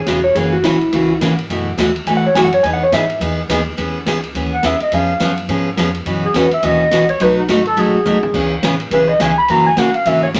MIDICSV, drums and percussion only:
0, 0, Header, 1, 2, 480
1, 0, Start_track
1, 0, Key_signature, 4, "major"
1, 0, Tempo, 285307
1, 601, Time_signature, 4, 2, 24, 8
1, 17495, End_track
2, 0, Start_track
2, 0, Title_t, "Drums"
2, 108, Note_on_c, 9, 38, 73
2, 108, Note_on_c, 9, 44, 51
2, 108, Note_on_c, 9, 51, 77
2, 277, Note_off_c, 9, 38, 0
2, 277, Note_off_c, 9, 44, 0
2, 277, Note_off_c, 9, 51, 0
2, 594, Note_on_c, 9, 51, 67
2, 762, Note_off_c, 9, 51, 0
2, 1069, Note_on_c, 9, 38, 76
2, 1069, Note_on_c, 9, 44, 64
2, 1069, Note_on_c, 9, 51, 80
2, 1237, Note_off_c, 9, 38, 0
2, 1237, Note_off_c, 9, 44, 0
2, 1237, Note_off_c, 9, 51, 0
2, 1365, Note_on_c, 9, 51, 44
2, 1534, Note_off_c, 9, 51, 0
2, 1555, Note_on_c, 9, 51, 68
2, 1723, Note_off_c, 9, 51, 0
2, 2038, Note_on_c, 9, 38, 69
2, 2038, Note_on_c, 9, 44, 63
2, 2038, Note_on_c, 9, 51, 78
2, 2206, Note_off_c, 9, 38, 0
2, 2206, Note_off_c, 9, 44, 0
2, 2206, Note_off_c, 9, 51, 0
2, 2329, Note_on_c, 9, 51, 52
2, 2498, Note_off_c, 9, 51, 0
2, 2523, Note_on_c, 9, 51, 61
2, 2691, Note_off_c, 9, 51, 0
2, 3000, Note_on_c, 9, 38, 76
2, 3000, Note_on_c, 9, 44, 61
2, 3000, Note_on_c, 9, 51, 71
2, 3168, Note_off_c, 9, 38, 0
2, 3168, Note_off_c, 9, 44, 0
2, 3168, Note_off_c, 9, 51, 0
2, 3293, Note_on_c, 9, 51, 51
2, 3462, Note_off_c, 9, 51, 0
2, 3476, Note_on_c, 9, 51, 64
2, 3644, Note_off_c, 9, 51, 0
2, 3957, Note_on_c, 9, 38, 69
2, 3957, Note_on_c, 9, 44, 58
2, 3957, Note_on_c, 9, 51, 68
2, 4125, Note_off_c, 9, 38, 0
2, 4125, Note_off_c, 9, 44, 0
2, 4125, Note_off_c, 9, 51, 0
2, 4247, Note_on_c, 9, 51, 56
2, 4416, Note_off_c, 9, 51, 0
2, 4434, Note_on_c, 9, 51, 61
2, 4602, Note_off_c, 9, 51, 0
2, 4917, Note_on_c, 9, 38, 77
2, 4917, Note_on_c, 9, 44, 58
2, 4917, Note_on_c, 9, 51, 74
2, 5086, Note_off_c, 9, 38, 0
2, 5086, Note_off_c, 9, 44, 0
2, 5086, Note_off_c, 9, 51, 0
2, 5208, Note_on_c, 9, 51, 51
2, 5376, Note_off_c, 9, 51, 0
2, 5401, Note_on_c, 9, 51, 70
2, 5569, Note_off_c, 9, 51, 0
2, 5879, Note_on_c, 9, 38, 64
2, 5879, Note_on_c, 9, 44, 57
2, 5879, Note_on_c, 9, 51, 80
2, 6048, Note_off_c, 9, 38, 0
2, 6048, Note_off_c, 9, 44, 0
2, 6048, Note_off_c, 9, 51, 0
2, 6356, Note_on_c, 9, 51, 72
2, 6525, Note_off_c, 9, 51, 0
2, 6836, Note_on_c, 9, 38, 71
2, 6836, Note_on_c, 9, 44, 61
2, 6836, Note_on_c, 9, 51, 73
2, 7004, Note_off_c, 9, 38, 0
2, 7004, Note_off_c, 9, 44, 0
2, 7004, Note_off_c, 9, 51, 0
2, 7124, Note_on_c, 9, 51, 49
2, 7292, Note_off_c, 9, 51, 0
2, 7317, Note_on_c, 9, 51, 63
2, 7485, Note_off_c, 9, 51, 0
2, 7788, Note_on_c, 9, 38, 69
2, 7788, Note_on_c, 9, 44, 57
2, 7788, Note_on_c, 9, 51, 68
2, 7956, Note_off_c, 9, 38, 0
2, 7956, Note_off_c, 9, 44, 0
2, 7956, Note_off_c, 9, 51, 0
2, 8078, Note_on_c, 9, 51, 50
2, 8247, Note_off_c, 9, 51, 0
2, 8272, Note_on_c, 9, 51, 64
2, 8440, Note_off_c, 9, 51, 0
2, 8752, Note_on_c, 9, 38, 75
2, 8752, Note_on_c, 9, 44, 58
2, 8752, Note_on_c, 9, 51, 75
2, 8921, Note_off_c, 9, 38, 0
2, 8921, Note_off_c, 9, 44, 0
2, 8921, Note_off_c, 9, 51, 0
2, 9042, Note_on_c, 9, 51, 48
2, 9210, Note_off_c, 9, 51, 0
2, 9232, Note_on_c, 9, 51, 60
2, 9400, Note_off_c, 9, 51, 0
2, 9711, Note_on_c, 9, 38, 68
2, 9711, Note_on_c, 9, 44, 60
2, 9711, Note_on_c, 9, 51, 66
2, 9879, Note_off_c, 9, 38, 0
2, 9879, Note_off_c, 9, 44, 0
2, 9879, Note_off_c, 9, 51, 0
2, 10001, Note_on_c, 9, 51, 49
2, 10170, Note_off_c, 9, 51, 0
2, 10192, Note_on_c, 9, 51, 67
2, 10361, Note_off_c, 9, 51, 0
2, 10669, Note_on_c, 9, 38, 68
2, 10669, Note_on_c, 9, 44, 61
2, 10669, Note_on_c, 9, 51, 71
2, 10837, Note_off_c, 9, 38, 0
2, 10837, Note_off_c, 9, 44, 0
2, 10837, Note_off_c, 9, 51, 0
2, 10957, Note_on_c, 9, 51, 55
2, 11125, Note_off_c, 9, 51, 0
2, 11149, Note_on_c, 9, 51, 65
2, 11317, Note_off_c, 9, 51, 0
2, 11630, Note_on_c, 9, 38, 77
2, 11630, Note_on_c, 9, 44, 56
2, 11630, Note_on_c, 9, 51, 66
2, 11798, Note_off_c, 9, 38, 0
2, 11798, Note_off_c, 9, 44, 0
2, 11798, Note_off_c, 9, 51, 0
2, 11925, Note_on_c, 9, 51, 50
2, 12094, Note_off_c, 9, 51, 0
2, 12111, Note_on_c, 9, 51, 69
2, 12279, Note_off_c, 9, 51, 0
2, 12593, Note_on_c, 9, 38, 72
2, 12593, Note_on_c, 9, 44, 51
2, 12593, Note_on_c, 9, 51, 72
2, 12761, Note_off_c, 9, 38, 0
2, 12761, Note_off_c, 9, 44, 0
2, 12761, Note_off_c, 9, 51, 0
2, 12879, Note_on_c, 9, 51, 47
2, 13047, Note_off_c, 9, 51, 0
2, 13075, Note_on_c, 9, 51, 61
2, 13243, Note_off_c, 9, 51, 0
2, 13552, Note_on_c, 9, 44, 50
2, 13552, Note_on_c, 9, 48, 48
2, 13720, Note_off_c, 9, 44, 0
2, 13720, Note_off_c, 9, 48, 0
2, 13842, Note_on_c, 9, 43, 75
2, 14011, Note_off_c, 9, 43, 0
2, 14031, Note_on_c, 9, 36, 81
2, 14033, Note_on_c, 9, 49, 79
2, 14199, Note_off_c, 9, 36, 0
2, 14201, Note_off_c, 9, 49, 0
2, 14515, Note_on_c, 9, 38, 75
2, 14515, Note_on_c, 9, 44, 54
2, 14515, Note_on_c, 9, 51, 71
2, 14683, Note_off_c, 9, 38, 0
2, 14683, Note_off_c, 9, 44, 0
2, 14683, Note_off_c, 9, 51, 0
2, 14800, Note_on_c, 9, 51, 53
2, 14968, Note_off_c, 9, 51, 0
2, 14992, Note_on_c, 9, 51, 64
2, 15160, Note_off_c, 9, 51, 0
2, 15474, Note_on_c, 9, 38, 73
2, 15474, Note_on_c, 9, 44, 63
2, 15474, Note_on_c, 9, 51, 61
2, 15642, Note_off_c, 9, 38, 0
2, 15642, Note_off_c, 9, 44, 0
2, 15642, Note_off_c, 9, 51, 0
2, 15953, Note_on_c, 9, 51, 68
2, 16121, Note_off_c, 9, 51, 0
2, 16431, Note_on_c, 9, 38, 73
2, 16431, Note_on_c, 9, 44, 63
2, 16431, Note_on_c, 9, 51, 69
2, 16599, Note_off_c, 9, 38, 0
2, 16599, Note_off_c, 9, 44, 0
2, 16599, Note_off_c, 9, 51, 0
2, 16724, Note_on_c, 9, 51, 49
2, 16892, Note_off_c, 9, 51, 0
2, 16915, Note_on_c, 9, 51, 70
2, 17083, Note_off_c, 9, 51, 0
2, 17401, Note_on_c, 9, 38, 71
2, 17401, Note_on_c, 9, 44, 57
2, 17401, Note_on_c, 9, 51, 72
2, 17495, Note_off_c, 9, 38, 0
2, 17495, Note_off_c, 9, 44, 0
2, 17495, Note_off_c, 9, 51, 0
2, 17495, End_track
0, 0, End_of_file